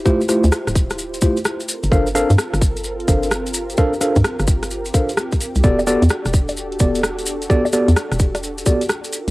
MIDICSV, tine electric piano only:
0, 0, Header, 1, 2, 480
1, 0, Start_track
1, 0, Tempo, 465116
1, 59, Time_signature, 4, 2, 24, 8
1, 9603, End_track
2, 0, Start_track
2, 0, Title_t, "Tine electric piano"
2, 0, Program_c, 0, 4
2, 58, Note_on_c, 0, 65, 85
2, 58, Note_on_c, 0, 67, 83
2, 59, Note_on_c, 0, 57, 85
2, 59, Note_on_c, 0, 64, 85
2, 59, Note_on_c, 0, 72, 97
2, 217, Note_off_c, 0, 57, 0
2, 217, Note_off_c, 0, 64, 0
2, 217, Note_off_c, 0, 65, 0
2, 217, Note_off_c, 0, 67, 0
2, 217, Note_off_c, 0, 72, 0
2, 298, Note_on_c, 0, 57, 82
2, 298, Note_on_c, 0, 64, 73
2, 298, Note_on_c, 0, 65, 72
2, 298, Note_on_c, 0, 67, 70
2, 298, Note_on_c, 0, 72, 86
2, 457, Note_off_c, 0, 57, 0
2, 457, Note_off_c, 0, 64, 0
2, 457, Note_off_c, 0, 65, 0
2, 457, Note_off_c, 0, 67, 0
2, 457, Note_off_c, 0, 72, 0
2, 1258, Note_on_c, 0, 57, 72
2, 1258, Note_on_c, 0, 64, 69
2, 1258, Note_on_c, 0, 65, 69
2, 1258, Note_on_c, 0, 67, 66
2, 1258, Note_on_c, 0, 72, 83
2, 1417, Note_off_c, 0, 57, 0
2, 1417, Note_off_c, 0, 64, 0
2, 1417, Note_off_c, 0, 65, 0
2, 1417, Note_off_c, 0, 67, 0
2, 1417, Note_off_c, 0, 72, 0
2, 1978, Note_on_c, 0, 62, 86
2, 1978, Note_on_c, 0, 69, 79
2, 1978, Note_on_c, 0, 70, 80
2, 1978, Note_on_c, 0, 72, 81
2, 1978, Note_on_c, 0, 77, 99
2, 2137, Note_off_c, 0, 62, 0
2, 2137, Note_off_c, 0, 69, 0
2, 2137, Note_off_c, 0, 70, 0
2, 2137, Note_off_c, 0, 72, 0
2, 2137, Note_off_c, 0, 77, 0
2, 2219, Note_on_c, 0, 62, 96
2, 2219, Note_on_c, 0, 69, 87
2, 2219, Note_on_c, 0, 70, 88
2, 2219, Note_on_c, 0, 72, 83
2, 2219, Note_on_c, 0, 77, 105
2, 2377, Note_off_c, 0, 69, 0
2, 2377, Note_off_c, 0, 77, 0
2, 2378, Note_off_c, 0, 62, 0
2, 2378, Note_off_c, 0, 70, 0
2, 2378, Note_off_c, 0, 72, 0
2, 3179, Note_on_c, 0, 69, 67
2, 3179, Note_on_c, 0, 70, 66
2, 3179, Note_on_c, 0, 72, 68
2, 3179, Note_on_c, 0, 77, 79
2, 3180, Note_on_c, 0, 62, 72
2, 3389, Note_off_c, 0, 62, 0
2, 3389, Note_off_c, 0, 69, 0
2, 3389, Note_off_c, 0, 70, 0
2, 3389, Note_off_c, 0, 72, 0
2, 3389, Note_off_c, 0, 77, 0
2, 3899, Note_on_c, 0, 77, 95
2, 3900, Note_on_c, 0, 62, 94
2, 3900, Note_on_c, 0, 69, 87
2, 3900, Note_on_c, 0, 70, 82
2, 3900, Note_on_c, 0, 72, 83
2, 4058, Note_off_c, 0, 62, 0
2, 4058, Note_off_c, 0, 69, 0
2, 4058, Note_off_c, 0, 70, 0
2, 4058, Note_off_c, 0, 72, 0
2, 4058, Note_off_c, 0, 77, 0
2, 4138, Note_on_c, 0, 62, 77
2, 4138, Note_on_c, 0, 69, 76
2, 4138, Note_on_c, 0, 70, 74
2, 4138, Note_on_c, 0, 77, 83
2, 4139, Note_on_c, 0, 72, 71
2, 4297, Note_off_c, 0, 62, 0
2, 4297, Note_off_c, 0, 69, 0
2, 4297, Note_off_c, 0, 70, 0
2, 4297, Note_off_c, 0, 72, 0
2, 4297, Note_off_c, 0, 77, 0
2, 5099, Note_on_c, 0, 69, 68
2, 5099, Note_on_c, 0, 70, 69
2, 5099, Note_on_c, 0, 72, 68
2, 5099, Note_on_c, 0, 77, 81
2, 5100, Note_on_c, 0, 62, 72
2, 5257, Note_off_c, 0, 70, 0
2, 5257, Note_off_c, 0, 72, 0
2, 5257, Note_off_c, 0, 77, 0
2, 5258, Note_off_c, 0, 62, 0
2, 5258, Note_off_c, 0, 69, 0
2, 5818, Note_on_c, 0, 59, 89
2, 5818, Note_on_c, 0, 66, 82
2, 5818, Note_on_c, 0, 67, 81
2, 5818, Note_on_c, 0, 69, 82
2, 5818, Note_on_c, 0, 74, 98
2, 5977, Note_off_c, 0, 59, 0
2, 5977, Note_off_c, 0, 66, 0
2, 5977, Note_off_c, 0, 67, 0
2, 5977, Note_off_c, 0, 69, 0
2, 5977, Note_off_c, 0, 74, 0
2, 6058, Note_on_c, 0, 59, 94
2, 6059, Note_on_c, 0, 66, 86
2, 6059, Note_on_c, 0, 67, 83
2, 6059, Note_on_c, 0, 69, 85
2, 6059, Note_on_c, 0, 74, 105
2, 6217, Note_off_c, 0, 59, 0
2, 6217, Note_off_c, 0, 66, 0
2, 6217, Note_off_c, 0, 67, 0
2, 6217, Note_off_c, 0, 69, 0
2, 6217, Note_off_c, 0, 74, 0
2, 7018, Note_on_c, 0, 67, 66
2, 7018, Note_on_c, 0, 69, 65
2, 7018, Note_on_c, 0, 74, 82
2, 7019, Note_on_c, 0, 59, 74
2, 7019, Note_on_c, 0, 66, 67
2, 7228, Note_off_c, 0, 59, 0
2, 7228, Note_off_c, 0, 66, 0
2, 7228, Note_off_c, 0, 67, 0
2, 7228, Note_off_c, 0, 69, 0
2, 7228, Note_off_c, 0, 74, 0
2, 7739, Note_on_c, 0, 59, 89
2, 7739, Note_on_c, 0, 66, 81
2, 7739, Note_on_c, 0, 67, 82
2, 7739, Note_on_c, 0, 69, 79
2, 7739, Note_on_c, 0, 74, 103
2, 7897, Note_off_c, 0, 59, 0
2, 7897, Note_off_c, 0, 66, 0
2, 7897, Note_off_c, 0, 67, 0
2, 7897, Note_off_c, 0, 69, 0
2, 7897, Note_off_c, 0, 74, 0
2, 7979, Note_on_c, 0, 59, 83
2, 7979, Note_on_c, 0, 66, 72
2, 7979, Note_on_c, 0, 67, 72
2, 7979, Note_on_c, 0, 69, 73
2, 7979, Note_on_c, 0, 74, 89
2, 8138, Note_off_c, 0, 59, 0
2, 8138, Note_off_c, 0, 66, 0
2, 8138, Note_off_c, 0, 67, 0
2, 8138, Note_off_c, 0, 69, 0
2, 8138, Note_off_c, 0, 74, 0
2, 8939, Note_on_c, 0, 59, 74
2, 8939, Note_on_c, 0, 66, 70
2, 8939, Note_on_c, 0, 67, 68
2, 8939, Note_on_c, 0, 69, 65
2, 8939, Note_on_c, 0, 74, 80
2, 9097, Note_off_c, 0, 59, 0
2, 9097, Note_off_c, 0, 66, 0
2, 9097, Note_off_c, 0, 67, 0
2, 9097, Note_off_c, 0, 69, 0
2, 9097, Note_off_c, 0, 74, 0
2, 9603, End_track
0, 0, End_of_file